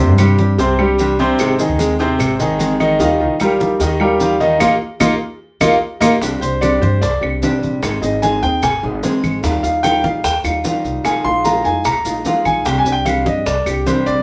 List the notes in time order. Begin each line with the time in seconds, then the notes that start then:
Already playing: C3 C4 C5
0.00 C4 D4 G4
0.08 G2
0.18 C3 G3 C4 D4 G4, cowbell, high conga, claves, maracas
0.38 C4 D4 G4, high conga, maracas
0.58 C2 C3 C4 C5, muted nylon-string guitar stroke, cowbell, maracas
0.79 G3 C4 D4 G4, high conga, claves
0.99 C3 G3 C4 D4 G4, cowbell, high conga, maracas
1.19 C3 C4 C5, high conga, maracas
1.39 G#1 D#3 G#3 C4 D#4 G#4, cowbell, high conga, claves, maracas
1.59 D#3 C4 D#4 G#4, high conga, maracas
1.69 D#2
1.79 D#3 G#3 C4 D#4 G#4, cowbell, high conga, maracas
1.99 C3 C4 D#4 G#4 C5, cowbell, high conga, maracas
2.19 G#1, muted nylon-string guitar stroke, cowbell, high conga, low conga, claves, maracas
2.39 D#3 C4 D#4 G#4, high conga, low conga, maracas
2.59 D#3 G#3 C4 D#4 G#4, cowbell, high conga, maracas
2.80 D#3 D#4 D#5, high conga, claves, maracas
2.99 D#2 D#3 G3 D#4 F4 D#5, cowbell, high conga, maracas
3.20 G3 D#4 F4, high conga
3.29 A#1
3.40 D#3 G3 D#4 F4 G4 A#4, cowbell, high conga, claves, maracas
3.60 G3 D#4 F4, high conga, maracas
3.80 D#2 D#3 D#4 D#5, muted nylon-string guitar stroke, cowbell, high conga, maracas
4.00 G3 D#4 F4 G4 A#4, high conga, claves
4.20 D#3 G3 D#4 F4, cowbell, high conga, maracas
4.40 D#3 D#4 D#5, high conga, maracas
4.60 A#1 A#3 D#4 F4, cowbell, high conga, claves, maracas
5.00 A#1 A#3 D#4 F4, cowbell, high conga, claves, maracas
5.61 A#1 A#3 D#4 F4, cowbell, high conga, claves, maracas
6.00 A#1 A#3 D#4 F4, cowbell, high conga, claves, maracas
6.22 C2 C3 G3 C4 D4 G4, high bongo, high conga, maracas
6.41 C2 C4 D4 G4 C5, high conga, maracas
6.61 C3 G3 C4 D4 G4 D5, high bongo, high conga, claves, maracas
6.81 G2 C4 D4 G4 C5, high bongo, high conga, maracas
7.01 C2 D5, muted nylon-string guitar stroke, high bongo, high conga, maracas
7.21 C2 C4 D4 G4, high bongo, high conga, claves
7.42 C3 G3 C4 D4 G4, high bongo, low bongo, high conga, maracas
7.62 A#1, high bongo, high conga, maracas
7.82 G#1 D#3 G#3 C4 D#4 G#4, high bongo, high conga, claves, maracas
8.02 G#1 C4 D#4 G#4 D#5, high conga, maracas
8.22 D#3 G#3 C4 D#4 G#4 G#5, high bongo, high conga, maracas
8.43 D#2 C4 D#4 G#4 G5, high bongo, high conga, maracas
8.62 G#1 G#5, muted nylon-string guitar stroke, high bongo, high conga, low conga, claves, maracas
8.83 G#1 C4 D#4 G#4, high bongo, high conga, low conga
9.03 D#3 G#3 C4 D#4 G#4, high bongo, low bongo, high conga, maracas
9.23 G#1, high bongo, high conga, claves, maracas
9.43 D#2 D#3 G3 D#4 F4, high bongo, maracas
9.63 D#2 G3 D#4 F4 F5, high conga, maracas
9.83 D#3 G3 D#4 F4 G5, high bongo, high conga, claves, maracas
10.04 A#1 G3 D#4 F4 F5, high bongo, high conga, maracas
10.24 D#2 G5, muted nylon-string guitar stroke, high bongo, high conga, maracas
10.44 D#2 G3 D#4 F4, high bongo, high conga, claves, maracas
10.64 D#3 G3 D#4 F4, high bongo, low bongo, high conga, maracas
10.84 C2, high bongo, maracas
11.04 A#1 D#3 G#3 D#4 F4 G#5, high bongo, high conga, claves, maracas
11.24 A#1 G#3 D#4 F4 C6, high conga
11.45 D#3 G#3 D#4 F4 A#5, high bongo, high conga, maracas
11.65 F2 G#3 D#4 F4 G#5, high bongo, high conga, maracas
11.84 A#1 A#5, muted nylon-string guitar stroke, high bongo, high conga, low conga, claves, maracas
12.05 A#1 G#3 D#4 F4, high bongo, high conga, maracas
12.25 D#3 G#3 D#4 F4, high bongo, low bongo, high conga, maracas
12.45 A#1 G#5, high bongo, high conga, claves, maracas
12.65 C2 C3 G3 C4 D4 G4 G5, high bongo, high conga, maracas
12.79 G#5
12.85 C2 C4 D4 G4, high conga, maracas
12.92 G5
13.05 C3 G3 C4 D4 G4 F5, high bongo, high conga, claves, maracas
13.26 G2 C4 D4 G4 D#5, high bongo, high conga, maracas
13.46 C2 D5, muted nylon-string guitar stroke, high bongo, high conga, maracas
13.66 C2 C4 D4 G4, high bongo, high conga, claves, maracas
13.86 C3 G3 C4 D4 G4 C5, high bongo, low bongo, high conga, maracas
14.06 A#1 D5, high bongo, maracas